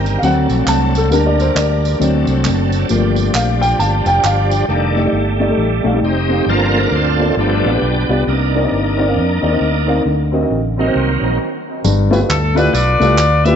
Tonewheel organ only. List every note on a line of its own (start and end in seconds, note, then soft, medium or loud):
0.00 0.22 D#3 medium
0.00 0.22 G3 medium
0.00 0.21 C4 medium
0.00 0.22 A#4 medium
0.22 1.10 F#3 medium
0.22 1.10 C4 medium
0.22 1.10 D4 medium
0.22 1.10 A4 medium
1.12 2.00 G3 medium
1.12 2.00 A#3 medium
1.12 2.00 D4 medium
1.12 2.00 A#4 medium
2.01 2.89 F#3 medium
2.01 2.89 C4 medium
2.01 2.89 D4 medium
2.01 2.89 A4 medium
2.91 4.66 F3 medium
2.91 4.65 G3 medium
2.91 4.66 D4 medium
2.91 4.66 G4 medium
4.68 5.01 D#3 soft
4.68 6.00 G3 medium
4.68 6.00 A3 soft
4.68 5.02 D4 medium
6.04 6.45 C4 medium
6.04 6.45 D#4 medium
6.04 6.50 G4 medium
6.49 6.81 F3 soft
6.49 6.81 A#3 soft
6.49 6.81 C4 soft
6.49 7.34 D4 medium
6.49 6.94 F4 medium
6.49 6.81 A4 soft
6.49 6.95 A#4 medium
6.95 7.36 C4 medium
6.95 7.36 F4 medium
6.95 7.36 A4 medium
7.38 7.70 F3 soft
7.38 7.71 A3 soft
7.38 8.24 B3 medium
7.38 8.24 D4 medium
7.38 8.07 G4 medium
8.28 10.03 A#3 soft
8.28 10.03 D4 medium
8.28 10.03 D#4 soft
10.79 11.38 D#3 soft
10.79 11.38 F#3 soft
10.79 11.38 A#3 soft
10.79 11.39 C4 medium